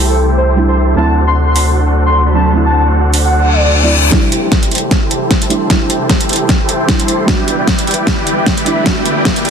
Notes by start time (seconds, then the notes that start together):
Already playing: C2 C3 G3 A3 D4 E4 G4 A4 C5 G5
0.09 A4
0.28 E4 G4 A4 C5 G5
0.37 C5
0.48 E4 G4 A4 C5 G5
0.56 G3 A3 D4 E4
0.68 E4 G4 A4 C5 C6
0.95 D2 C3 F#3 A3 C4 D4 F#4 A4 C5 F#5 A5
0.99 E4
1.27 D4 F#4 A4 C5 F#5 C6
1.47 C6
1.56 D4 F#4 A4 C5 F#5, open hi-hat
1.86 D4 F#4 A4 C5 F#5
2.06 D4 F#4 A4 C5 F#5 C6
2.26 D4 F#4 A4 C5 B5
2.34 F#3 A3 C4 D4 A5
2.52 F#3 A3 C4 D4 E4 F#4 A4 C5 F#5
2.65 A5
2.85 D4 F#4 A4 C5 F#5
3.13 D4 F#4 A4 C5 F#5, open hi-hat
3.25 F#5
3.33 reverse cymbal
3.44 D4 F#4 A4 C5 F#5
3.53 D5
3.64 D4 F#4 A4 C5 F#5
3.83 F#3 A3 C4 D4 E4 F#4 A4 C5 D5 B5
4.10 C3 G3 A3 D4 E4 G4 A4 C5 G5, kick, snare, closed hi-hat, riser
4.14 E4
4.32 closed hi-hat
4.43 E4 G4 A4 C5 E5 G5
4.52 kick, snare, closed hi-hat
4.63 E5, closed hi-hat
4.71 E4 G4 A4 C5 G5, closed hi-hat
4.75 closed hi-hat
4.78 closed hi-hat
4.91 kick, snare, closed hi-hat
5.02 E4 G4 A4 C5 G5
5.11 closed hi-hat
5.22 E4 G4 A4 C5 E5 G5
5.31 kick, snare, closed hi-hat
5.42 E4 G4 A4 C5 C6, closed hi-hat
5.49 G3 A3 D4 E4 C5, closed hi-hat
5.68 G3 A3 D4 E4 G4 A4 C5 G5, kick, snare, closed hi-hat
5.81 C5
5.90 closed hi-hat
6.01 E4 G4 A4 C5 G5
6.10 kick, snare, closed hi-hat
6.21 closed hi-hat
6.29 E4 G4 A4 C5 G5, closed hi-hat
6.33 closed hi-hat
6.36 closed hi-hat
6.40 A4
6.49 kick, snare, closed hi-hat
6.60 E4 G4 A4 C5 G5
6.69 C5, closed hi-hat
6.80 E4 G4 A4 C5 G5
6.87 G3 A3 D4 E4, kick, snare, closed hi-hat
7.00 E4 G4 A4 C5 C6, closed hi-hat
7.08 closed hi-hat
7.26 D3 G3 B3 D4 E4 F#4 G4 B4 D5 E5 G5, kick, snare, closed hi-hat
7.48 closed hi-hat
7.59 E4 G4 B4 D5 G5
7.67 kick, snare, closed hi-hat
7.78 G5, closed hi-hat
7.87 E4 G4 B4 D5 G5, closed hi-hat
7.91 closed hi-hat
7.94 closed hi-hat
8.07 kick, snare, closed hi-hat
8.18 E4 G4 B4 D5 G5
8.27 closed hi-hat
8.38 E4 G4 B4 D5 G5
8.46 kick, snare, closed hi-hat
8.57 E4 G4 B4 D5 B5, closed hi-hat
8.65 G3 B3 D4 E4 E5, closed hi-hat
8.84 G3 B3 D4 E4 F#4 G4 B4 D5 G5, kick, snare, closed hi-hat
8.97 E5
9.06 closed hi-hat
9.17 E4 G4 B4 D5 G5
9.25 kick, snare, closed hi-hat
9.36 closed hi-hat
9.45 E4 G4 B4 D5 G5, closed hi-hat